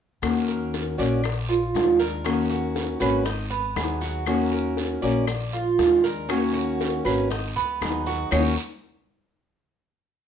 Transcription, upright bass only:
0, 0, Header, 1, 2, 480
1, 0, Start_track
1, 0, Key_signature, -6, "minor"
1, 0, Tempo, 505476
1, 220, Time_signature, 4, 2, 24, 8
1, 9754, End_track
2, 0, Start_track
2, 0, Title_t, "Upright bass"
2, 0, Program_c, 0, 32
2, 213, Note_on_c, 0, 39, 92
2, 898, Note_off_c, 0, 39, 0
2, 939, Note_on_c, 0, 34, 89
2, 1620, Note_off_c, 0, 34, 0
2, 1656, Note_on_c, 0, 39, 87
2, 2794, Note_off_c, 0, 39, 0
2, 2855, Note_on_c, 0, 32, 92
2, 3538, Note_off_c, 0, 32, 0
2, 3572, Note_on_c, 0, 39, 85
2, 4713, Note_off_c, 0, 39, 0
2, 4775, Note_on_c, 0, 34, 84
2, 5459, Note_off_c, 0, 34, 0
2, 5495, Note_on_c, 0, 39, 73
2, 6636, Note_off_c, 0, 39, 0
2, 6698, Note_on_c, 0, 32, 86
2, 7146, Note_off_c, 0, 32, 0
2, 7182, Note_on_c, 0, 37, 71
2, 7405, Note_off_c, 0, 37, 0
2, 7422, Note_on_c, 0, 39, 85
2, 7846, Note_off_c, 0, 39, 0
2, 7899, Note_on_c, 0, 39, 87
2, 8124, Note_off_c, 0, 39, 0
2, 9754, End_track
0, 0, End_of_file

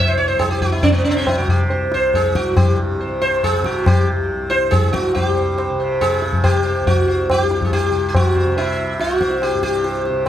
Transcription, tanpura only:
0, 0, Header, 1, 2, 480
1, 0, Start_track
1, 0, Tempo, 432277
1, 1893, Time_signature, 4, 2, 24, 8
1, 5724, Tempo, 425834
1, 11508, End_track
2, 0, Start_track
2, 0, Title_t, "Tanpura"
2, 0, Program_c, 0, 104
2, 0, Note_on_c, 0, 36, 57
2, 0, Note_on_c, 0, 43, 55
2, 0, Note_on_c, 0, 48, 56
2, 284, Note_off_c, 0, 43, 0
2, 288, Note_on_c, 0, 43, 51
2, 919, Note_off_c, 0, 48, 0
2, 919, Note_on_c, 0, 48, 57
2, 1538, Note_off_c, 0, 48, 0
2, 1538, Note_on_c, 0, 48, 63
2, 2140, Note_off_c, 0, 36, 0
2, 2144, Note_on_c, 0, 36, 59
2, 2774, Note_off_c, 0, 43, 0
2, 2779, Note_on_c, 0, 43, 60
2, 3391, Note_off_c, 0, 48, 0
2, 3391, Note_on_c, 0, 48, 54
2, 4007, Note_off_c, 0, 48, 0
2, 4007, Note_on_c, 0, 48, 58
2, 4619, Note_off_c, 0, 36, 0
2, 4623, Note_on_c, 0, 36, 54
2, 5248, Note_off_c, 0, 43, 0
2, 5252, Note_on_c, 0, 43, 55
2, 5720, Note_off_c, 0, 43, 0
2, 5720, Note_on_c, 0, 43, 58
2, 6339, Note_off_c, 0, 48, 0
2, 6339, Note_on_c, 0, 48, 59
2, 6969, Note_off_c, 0, 48, 0
2, 6969, Note_on_c, 0, 48, 52
2, 7575, Note_off_c, 0, 36, 0
2, 7579, Note_on_c, 0, 36, 62
2, 8201, Note_off_c, 0, 43, 0
2, 8201, Note_on_c, 0, 43, 60
2, 8819, Note_off_c, 0, 48, 0
2, 8819, Note_on_c, 0, 48, 57
2, 9450, Note_off_c, 0, 48, 0
2, 9450, Note_on_c, 0, 48, 71
2, 10050, Note_off_c, 0, 36, 0
2, 10055, Note_on_c, 0, 36, 54
2, 10661, Note_off_c, 0, 43, 0
2, 10666, Note_on_c, 0, 43, 61
2, 11292, Note_off_c, 0, 48, 0
2, 11292, Note_on_c, 0, 48, 59
2, 11508, Note_off_c, 0, 36, 0
2, 11508, Note_off_c, 0, 43, 0
2, 11508, Note_off_c, 0, 48, 0
2, 11508, End_track
0, 0, End_of_file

